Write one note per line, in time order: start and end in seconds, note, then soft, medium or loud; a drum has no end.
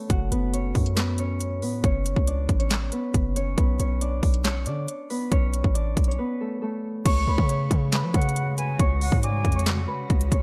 0.00 3.00 A3 medium
0.00 0.32 B3 medium
0.00 0.54 C#4 medium
0.00 1.86 A4 medium
0.00 0.31 B4 medium
0.00 0.53 C#5 medium
0.10 0.31 F#1 loud
0.10 2.54 F#4 medium
0.10 1.71 F#5 medium
0.10 kick loud
0.10 closed hi-hat medium
0.31 0.73 F#1 loud
0.31 0.96 B3 medium
0.31 0.95 B4 medium
0.31 closed hi-hat medium
0.53 1.19 C#4 medium
0.53 1.18 C#5 medium
0.53 closed hi-hat medium
0.75 1.64 F#2 loud
0.75 kick medium
0.75 closed hi-hat medium
0.75 open hi-hat soft
0.86 closed hi-hat medium
0.96 1.63 B3 medium
0.96 1.62 B4 medium
0.96 snare loud
0.96 clap medium
0.96 closed hi-hat medium
1.18 1.85 C#4 medium
1.18 1.84 C#5 medium
1.18 closed hi-hat medium
1.41 closed hi-hat medium
1.62 1.83 A2 loud
1.62 2.93 B3 medium
1.62 2.92 B4 medium
1.62 open hi-hat medium
1.84 2.15 F#1 loud
1.84 2.33 C#4 medium
1.84 2.33 C#5 loud
1.84 kick loud
1.84 closed hi-hat medium
2.06 closed hi-hat medium
2.16 2.48 C#2 loud
2.16 kick medium
2.27 2.65 D4 medium
2.27 2.65 D5 medium
2.27 closed hi-hat medium
2.49 2.91 A1 loud
2.49 kick medium
2.49 closed hi-hat medium
2.59 3.37 C#4 medium
2.59 3.36 C#5 medium
2.59 closed hi-hat medium
2.71 snare loud
2.71 clap loud
2.71 closed hi-hat medium
2.92 3.58 B3 medium
2.92 3.57 B4 medium
2.92 closed hi-hat medium
3.14 3.56 F#1 loud
3.14 kick loud
3.14 closed hi-hat medium
3.36 3.80 C#4 medium
3.36 3.79 C#5 medium
3.36 closed hi-hat medium
3.57 3.79 B1 loud
3.57 5.10 B3 medium
3.57 5.10 B4 medium
3.57 kick loud
3.57 closed hi-hat medium
3.79 4.21 B1 loud
3.79 4.07 C#4 medium
3.79 4.07 C#5 medium
3.79 closed hi-hat medium
4.01 4.50 D4 medium
4.01 4.50 D5 medium
4.01 closed hi-hat medium
4.23 4.68 B1 loud
4.23 kick medium
4.23 closed hi-hat medium
4.23 open hi-hat soft
4.34 closed hi-hat medium
4.44 4.73 C#4 medium
4.44 4.73 C#5 medium
4.44 snare loud
4.44 clap medium
4.44 closed hi-hat medium
4.66 4.87 D3 loud
4.66 5.38 D4 medium
4.66 5.38 D5 medium
4.66 closed hi-hat medium
4.88 closed hi-hat medium
5.10 6.19 B3 medium
5.10 6.18 B4 medium
5.10 open hi-hat medium
5.32 5.63 B1 loud
5.32 5.81 C#4 medium
5.32 5.81 C#5 loud
5.32 kick loud
5.32 closed hi-hat medium
5.54 closed hi-hat medium
5.64 5.96 A1 loud
5.64 kick medium
5.75 6.14 D4 medium
5.75 6.14 D5 medium
5.75 closed hi-hat medium
5.97 6.18 B1 loud
5.97 kick medium
5.97 closed hi-hat medium
6.04 7.06 C#5 medium
6.04 closed hi-hat soft
6.08 8.98 C#4 medium
6.08 closed hi-hat soft
6.19 9.30 B3 medium
6.19 7.28 B4 medium
6.41 6.62 A3 medium
6.41 6.61 A4 medium
6.62 9.96 A3 medium
6.62 8.81 A4 medium
7.05 7.26 C#2 loud
7.05 10.43 C#3 medium
7.05 10.43 G#3 medium
7.05 10.43 F#4 medium
7.05 7.49 C#5 medium
7.05 7.49 C#6 medium
7.05 7.47 C#6 loud
7.05 kick loud
7.05 closed hi-hat medium
7.05 crash loud
7.27 7.38 C#2 loud
7.27 7.94 B4 medium
7.27 7.93 B5 medium
7.38 7.69 C#3 loud
7.38 kick medium
7.49 8.15 C#5 medium
7.49 8.14 C#6 medium
7.49 closed hi-hat medium
7.71 8.05 C#3 loud
7.71 kick medium
7.71 closed hi-hat medium
7.92 8.58 B4 medium
7.92 8.57 B5 medium
7.92 snare loud
7.92 clap loud
7.92 closed hi-hat medium
8.03 8.14 F3 loud
8.14 8.77 C#3 loud
8.14 8.80 C#5 medium
8.14 8.55 F#5 medium
8.14 8.80 C#6 medium
8.14 kick loud
8.14 closed hi-hat medium
8.22 closed hi-hat medium
8.29 closed hi-hat medium
8.36 closed hi-hat medium
8.57 9.88 B4 medium
8.57 8.78 G#5 medium
8.57 9.87 B5 medium
8.57 closed hi-hat medium
8.79 9.11 C#2 loud
8.79 9.30 C#5 medium
8.79 9.30 C#6 medium
8.79 kick loud
8.79 closed hi-hat medium
9.01 9.22 F#5 medium
9.01 open hi-hat medium
9.12 9.43 G#2 loud
9.12 kick medium
9.23 9.62 D5 medium
9.23 9.64 G#5 medium
9.23 9.62 D6 medium
9.23 closed hi-hat medium
9.45 9.86 F2 loud
9.45 kick medium
9.45 closed hi-hat soft
9.52 10.32 C#6 medium
9.52 closed hi-hat medium
9.56 10.33 C#5 medium
9.56 closed hi-hat medium
9.66 snare loud
9.66 clap loud
9.66 closed hi-hat medium
9.87 10.43 B4 medium
9.87 10.43 B5 medium
10.10 10.31 C#2 loud
10.10 kick loud
10.10 closed hi-hat soft
10.21 closed hi-hat medium
10.32 10.43 C#2 loud
10.32 10.43 C#5 medium
10.32 10.43 C#6 medium
10.32 kick medium
10.32 closed hi-hat medium